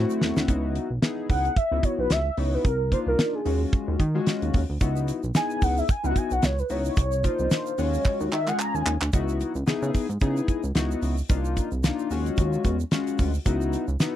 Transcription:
Already playing: A3 C4 E4 F#4 C5
0.10 shaker
0.21 E2, snare
0.36 D2, snare, shaker
0.48 C#2 B3 D#4 E4 F#4, kick, closed hi-hat
0.75 closed hi-hat
0.90 B1
1.02 B3 D#4 E4 G#4, snare, closed hi-hat
1.29 C#2 F#5, kick, open hi-hat
1.45 closed hi-hat
1.56 E5, kick, closed hi-hat
1.72 C#2 B3 D#4 E4 F#4
1.83 C#5, kick, closed hi-hat
1.99 B1 B4
2.10 C#2 E5, snare, closed hi-hat
2.37 C#2 B3 D#4 E4 F#4 C#5, open hi-hat
2.54 B4
2.65 C2 A#4, kick, closed hi-hat
2.91 A#3 D4 D#4 F4 C5, kick, closed hi-hat
3.07 C2 A#4
3.19 snare, closed hi-hat
3.35 G#4
3.45 D#2 G#3 C#4 F4 F#4, open hi-hat
3.73 kick, closed hi-hat
3.88 D#2
4.00 D#3, kick, closed hi-hat
4.14 G#3 C#4 F4 F#4
4.26 snare, closed hi-hat
4.42 D#2, closed hi-hat
4.54 D#2, kick, open hi-hat
4.70 D2
4.80 C#2 B3 D#4 E4 F#4, kick, closed hi-hat, shaker
4.96 shaker
5.08 closed hi-hat, shaker
5.23 B1, shaker
5.35 B3 D#4 E4 G#4 G#5, snare, closed hi-hat, shaker
5.50 shaker
5.62 C#2 F#5, kick, open hi-hat, shaker
5.77 E5, shaker
5.88 G#5, kick, closed hi-hat, shaker
6.03 C#2 B3 D#4 E4 F4 F#5, shaker
6.11 F#4
6.16 G#5, kick, closed hi-hat, shaker
6.31 B1 F#5, shaker
6.43 C#2 C#5, snare, closed hi-hat, shaker
6.59 B4, shaker
6.70 C#2 B3 D#4 E4 F#4 C#5, open hi-hat, shaker
6.85 C#5, shaker
6.97 C2, kick, closed hi-hat, shaker
7.12 shaker
7.24 A#3 D4 D#4 F4 C5, kick, closed hi-hat, shaker
7.39 C2, shaker
7.51 snare, closed hi-hat, shaker
7.66 shaker
7.78 D#2 G#3 C#4 F4 F#4 C#5, open hi-hat, shaker
7.94 shaker
8.04 kick, clap, shaker
8.20 D#2, shaker
8.32 D#3 E5, clap, shaker
8.47 G#3 C#4 F4 G#4 F#5, clap, shaker
8.59 A#5, clap, shaker
8.74 D#2 G#5, shaker
8.86 D#2, clap, shaker
9.01 D2, clap, shaker
9.13 C#2 B3 D#4 E4 F#4, kick, closed hi-hat, shaker
9.29 shaker
9.41 closed hi-hat, shaker
9.55 C#2, shaker
9.66 C#3 B3 D#4 E4 G#4, snare, closed hi-hat, shaker
9.82 C#3, shaker
9.94 kick, open hi-hat, shaker
10.09 G#2, closed hi-hat, shaker
10.21 C#3 B3 D#4 E4 G#4, kick, closed hi-hat, shaker
10.37 shaker
10.48 kick, closed hi-hat, shaker
10.64 C#2, shaker
10.75 C#2 B3 D#4 E4 F#4, snare, closed hi-hat, shaker
10.91 shaker
11.02 C#2, open hi-hat, shaker
11.18 shaker
11.29 C2 A#3 D4 D#4 F4, kick, closed hi-hat, shaker
11.45 shaker
11.57 kick, closed hi-hat, shaker
11.72 C2, shaker
11.83 A#3 D4 D#4 F4, snare, closed hi-hat, shaker
11.99 shaker
12.10 D#2 G#3 C#4 F4 F#4, open hi-hat, shaker
12.26 closed hi-hat, shaker
12.37 D#2, kick, closed hi-hat, shaker
12.53 shaker
12.65 E2, kick, closed hi-hat, shaker
12.80 shaker
12.91 G#3 C#4 F4 F#4, snare, closed hi-hat, shaker
13.07 closed hi-hat, shaker
13.19 D2, kick, open hi-hat, shaker
13.34 shaker
13.45 C#2 B3 D#4 E4 F#4, kick, closed hi-hat, shaker
13.61 shaker
13.73 closed hi-hat, shaker
13.88 C#2, shaker
14.00 B3 D#4 E4 F#4, snare, closed hi-hat, shaker

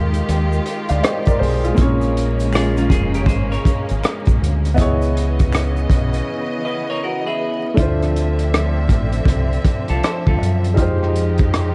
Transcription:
Already playing: D#2 D#3 G#3 D#4 F4 G4 A4 C5
0.14 closed hi-hat, shaker
0.29 D#2, closed hi-hat, shaker
0.52 shaker
0.66 closed hi-hat, shaker
0.89 D2 D5 F5, closed hi-hat, shaker
1.03 C5 D#5, finger snap, cross-stick, closed hi-hat, shaker
1.25 A#4 D5, kick, closed hi-hat, shaker
1.39 B1 G#4 C5, open hi-hat
1.64 F4 G#4, closed hi-hat, shaker
1.74 A#3 C4 C#4 F4, kick, closed hi-hat, shaker
1.79 A#1 C#3 G#4 C#5
1.83 C#4
2.01 closed hi-hat, shaker
2.17 closed hi-hat
2.40 closed hi-hat, shaker
2.53 F4 G#4, finger snap, cross-stick, closed hi-hat, shaker
2.77 C#4 F4, closed hi-hat, shaker
2.90 F1 F4 G#4, kick, cross-stick, closed hi-hat, shaker
3.14 G4 A#4, closed hi-hat, shaker
3.26 G#1 G#4 C5, kick, closed hi-hat, shaker
3.52 A#4 C#5, closed hi-hat, shaker
3.65 kick, closed hi-hat, shaker
3.89 G#1, closed hi-hat, shaker
4.04 finger snap, cross-stick, closed hi-hat, shaker
4.25 A#1, kick, closed hi-hat, shaker
4.42 D2, closed hi-hat
4.65 closed hi-hat, shaker
4.74 B3 E4 D#5, kick, shaker
4.78 C#2 C#3 E3 B3 G#4 C#5, closed hi-hat
5.02 closed hi-hat, shaker
5.17 closed hi-hat
5.39 kick, closed hi-hat, shaker
5.53 finger snap, cross-stick, closed hi-hat, shaker
5.77 shaker
5.90 B1, kick, cross-stick, closed hi-hat, shaker
6.13 closed hi-hat, shaker
6.65 B4 D#5
6.90 A#4 C#5
7.04 F#4 A#4
7.26 E4 G#4
7.74 D2 A3 D4 E5, kick, closed hi-hat
7.78 D3 F3 C4 F4 C5 E5
8.02 cross-stick, closed hi-hat
8.16 closed hi-hat
8.39 closed hi-hat
8.54 cross-stick, closed hi-hat
8.89 A1, kick, cross-stick, closed hi-hat
9.13 closed hi-hat
9.25 C2, kick, closed hi-hat
9.53 closed hi-hat
9.65 kick, closed hi-hat
9.88 C2 F4 A4, closed hi-hat
10.03 A4 C5, cross-stick, closed hi-hat
10.27 D2 F4 A4, kick
10.41 F#2, closed hi-hat
10.64 closed hi-hat
10.74 F2 G3 D#4 F4 G4, kick, closed hi-hat
10.78 G#3 D#4 G4 C5
11.03 cross-stick
11.16 closed hi-hat
11.38 kick, closed hi-hat
11.54 cross-stick, closed hi-hat

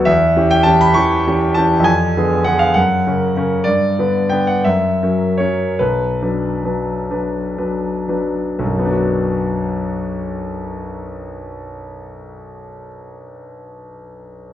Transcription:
0.05 E2 E5
0.36 E3 C#4 G4
0.51 G5
0.63 E3 C#4 G4 A5
0.81 B5
0.94 E3 C#4 G4 C#6
1.27 E3 C#4 G4
1.54 E3 C#4 G4 A5
1.80 F2
1.84 G#5
2.17 D3 B3 G#4
2.44 D3 B3 G#4 F#5
2.59 F5
2.74 F#2 F#5
3.07 C#3 C#4 A#4
3.36 C#3 C#4 A#4
3.64 G2 D5
3.99 D3 B3 B4
4.29 D3 B3 B4 G5
4.47 F#5
4.64 F#2 E5
5.03 F#3 C#4 A#4
5.38 F#3 C#4 A#4 C#5
5.79 B1 B4
6.22 F#3 D4 B4
6.64 F#3 D4 B4
7.11 F#3 D4 B4
7.58 F#3 D4 B4
8.09 F#3 D4 B4
8.59 B1
8.66 F#2
8.72 F#3
8.79 B3
8.85 D4
8.91 F#4

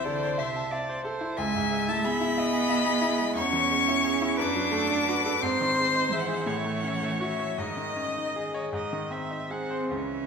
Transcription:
Already playing: C2 C3 C4 E4 C5
0.04 D3 A4 D5
0.23 C5
0.38 C3 C5 E5
0.56 A5
0.71 D5 E5
0.89 C5
1.05 A4 C5
1.21 E4
1.37 C#2 G#3 E5 G#5
1.55 G#2
1.71 G#3
1.88 A3 E4 A5
2.05 B3 G#4 B5
2.21 E4
2.38 D#5 E5
2.53 G#5
2.70 E5
2.86 G#4
3.02 E4
3.18 G#3
3.35 E2 C#4 C#5 C#6
3.53 E3
3.71 G#3
3.88 E4
4.04 G#4
4.22 E4
4.37 F#2 D4 B4 D6
4.56 F#3
4.71 A3 A4
4.90 D4
5.05 F#4 B4
5.26 A4
5.41 G#2 C4 C5 C6
5.61 D#3
5.78 G#3
5.95 D#4
6.11 E3 G#3 E5
6.20 F#5
6.27 G#4 E5
6.35 F#5
6.41 E5
6.46 A2 C#5 F#5
6.57 E5
6.64 A3 F#5
6.71 E5
6.80 C#4 F#5
6.87 E5
6.94 F#5
7.02 A3 E5
7.11 F#5
7.18 F#4 E5
7.40 C#5
7.58 G#2 D#3 D#5
7.77 D#3
7.96 C#4
8.16 D#4
8.36 G#4
8.54 C#5
8.73 G#2 D#5
8.93 D#3
9.10 C4 E5
9.31 D#4
9.50 C4 G#4 F#5
9.71 C5
9.91 C#2 E3 C#4 E5

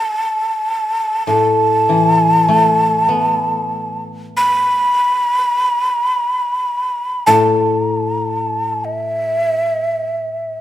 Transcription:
Already playing: A5
1.27 A2 A5
1.89 E3
2.48 A3
3.09 B3
4.37 B5
7.26 A2 A5
7.82 A#5
7.97 A5
8.13 A#5
8.28 A5
8.85 E5

